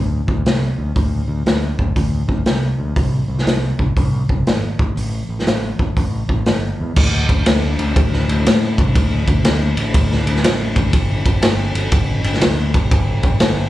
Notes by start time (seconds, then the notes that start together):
Already playing: D2
0.27 D2, kick
0.45 C2, snare, open hi-hat
0.79 D2
0.96 D2, kick, open hi-hat
1.28 D2
1.46 D2, snare, open hi-hat
1.79 D2, kick
1.96 D2, kick, open hi-hat
2.28 D2, kick
2.46 C2, snare, open hi-hat
2.79 D2
2.96 C2, kick, open hi-hat
3.28 C2
3.38 snare
3.47 C2, snare, open hi-hat
3.79 C2, kick
3.97 C2, kick, open hi-hat
4.29 C2, kick
4.46 G#1, snare, open hi-hat
4.79 A1, kick
4.96 A1, open hi-hat
5.29 A1
5.39 snare
5.46 A1, snare, open hi-hat
5.79 A1, kick
5.97 A1, kick, open hi-hat
6.29 A1, kick
6.46 G1, snare, open hi-hat
6.80 E2
6.96 D2, kick, crash
7.29 D2, kick, ride
7.46 D2, snare, ride
7.79 D2, ride
7.96 D2, kick, ride
8.13 snare
8.28 D2, ride
8.45 A2, snare, ride
8.78 C2, kick, ride
8.95 D2, kick, ride
9.27 D2, kick, ride
9.43 D2, snare, ride
9.75 A1, ride
9.94 D2, kick, ride
10.12 snare
10.25 D2, ride
10.36 snare
10.42 A1, snare, ride
10.76 D2, kick, ride
10.92 G1, kick, ride
11.25 G1, kick, ride
11.41 G1, snare, ride
11.75 G1, ride
11.92 G1, kick, ride
12.24 G1, ride
12.33 snare
12.40 D2, snare, ride
12.74 E1, kick, ride
12.91 G1, kick, ride
13.23 G1, kick, ride
13.40 G1, snare, ride